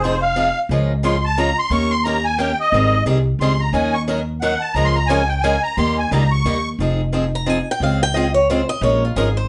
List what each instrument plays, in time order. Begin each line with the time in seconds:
Already playing: upright bass F1
0.00 steel-string acoustic guitar F3 C4, accordion C5
0.05 steel-string acoustic guitar D#4 G#4
0.21 accordion F5
0.36 steel-string acoustic guitar F3 C4 D#4 G#4
0.69 upright bass C#2, steel-string acoustic guitar C#3 F3 G#3 C#4 F4 A#4
1.03 steel-string acoustic guitar C#3 F3 G#3 C#4 F4 A#4, accordion C6
1.25 accordion A5
1.38 steel-string acoustic guitar C#3 F3 G#3 C#4 F4 A#4, accordion A#5
1.59 accordion C6
1.70 upright bass D#2, steel-string acoustic guitar D#3 A#3 C#4 G4 A#4, accordion C#6
1.91 accordion C6
2.04 steel-string acoustic guitar D#3 A#3 C#4 G4 A#4, accordion A#5
2.25 accordion G#5
2.38 steel-string acoustic guitar D#3 A#3 C#4 G4 A#4, accordion G5
2.60 accordion D#5
2.72 upright bass G#1, steel-string acoustic guitar D#3 G3 C4 D#4 G#4
3.05 upright bass C2, steel-string acoustic guitar D#3 G3 C4 D#4 G#4
3.39 upright bass C#2, steel-string acoustic guitar D#3 G3 C4 D#4 G#4, accordion C6
3.60 accordion A#5
3.73 upright bass D#2, steel-string acoustic guitar D#3 F#3 C#4 D#4 A#4, accordion G#5
3.93 accordion C#6
4.08 steel-string acoustic guitar D#3 F#3 C#4 D#4 A#4
4.41 steel-string acoustic guitar D#3 F#3 C#4 D#4 A#4, accordion F#5
4.60 accordion A5
4.74 upright bass C#2, steel-string acoustic guitar C#3 F3 G#3 C#4 F4 A#4, accordion A#5
4.85 accordion C6
4.95 accordion A#5
5.07 steel-string acoustic guitar C#3 F3 G#3 C#4 F4, accordion G#5
5.11 steel-string acoustic guitar A#4
5.29 accordion G5
5.41 steel-string acoustic guitar C#3 F3 G#3 C#4 F4 A#4, accordion G#5
5.63 accordion A#5
5.77 upright bass D#2, steel-string acoustic guitar D#3 G3 A#3 D#4 G4, accordion C6
5.98 accordion G#5
6.11 upright bass C#2, steel-string acoustic guitar D#3 G3 A#3 D#4 G4, accordion A#5
6.32 accordion C#6
6.45 upright bass D#2, steel-string acoustic guitar D#3 G3 A#3 D#4 G4
6.79 upright bass F1, steel-string acoustic guitar F3 C4 D#4 G#4
7.13 steel-string acoustic guitar F3 C4 D#4 G#4
7.35 steel-string acoustic guitar A#5
7.46 steel-string acoustic guitar F3 C4 D#4 G#4 G#5
7.71 steel-string acoustic guitar G5
7.80 upright bass C#2, steel-string acoustic guitar C#3 G#3 C4 F4 G#4 F5
8.03 steel-string acoustic guitar G5
8.14 steel-string acoustic guitar C#3 G#3 C4 F4 G#4 D#5
8.34 steel-string acoustic guitar C#5
8.50 steel-string acoustic guitar C#3 G#3 C4 F4 G#4 C5
8.69 steel-string acoustic guitar D#5
8.81 upright bass A#1, steel-string acoustic guitar F3 G#3 C#4 F4 A#4 C#5
9.05 steel-string acoustic guitar F4
9.16 upright bass G#1, steel-string acoustic guitar F3 G#3 C#4 F4 G#4 A#4
9.37 steel-string acoustic guitar C5